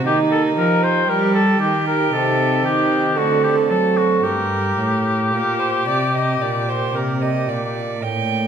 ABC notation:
X:1
M:4/4
L:1/16
Q:1/4=56
K:Gm
V:1 name="Violin"
E4 G8 A4 | B4 B c d e d c B e d2 g2 |]
V:2 name="Oboe"
G A B c B A G B A2 G2 ^F G A F | G12- G2 z2 |]
V:3 name="Pipe organ"
[B,G]8 [CE]4 [A,CD]4 | z8 [B,D]8 |]
V:4 name="Pipe organ" clef=bass
E,2 F,2 G,2 E,2 C,2 E,2 D,2 ^F,2 | G,,2 A,,2 B,,2 C,2 B,,2 C,2 B,,2 A,,2 |]
V:5 name="Cello" clef=bass
E,2 F,2 G,2 E,2 C,2 E,2 D,2 ^F,2 | G,,2 A,,2 B,,2 C,2 B,,2 C,2 B,,2 A,,2 |]